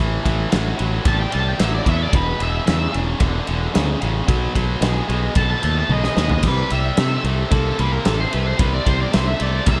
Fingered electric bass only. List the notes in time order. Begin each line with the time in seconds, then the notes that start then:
0.00 A1
0.26 A1
0.54 A1
0.80 A1
1.06 A1
1.35 C2
1.60 A1
1.86 E2
2.13 E1
2.40 E1
2.68 E2
2.95 E1
3.21 E1
3.49 E1
3.76 D2
4.03 A1
4.29 B1
4.56 B1
4.81 B1
5.09 B1
5.36 B1
5.64 D#2
5.89 B1
6.17 D#2
6.44 C2
6.72 C2
6.98 C3
7.24 C2
7.52 C2
7.79 C2
8.07 A1
8.34 C2
8.60 C2
8.87 C2
9.15 C2
9.41 C2
9.67 C2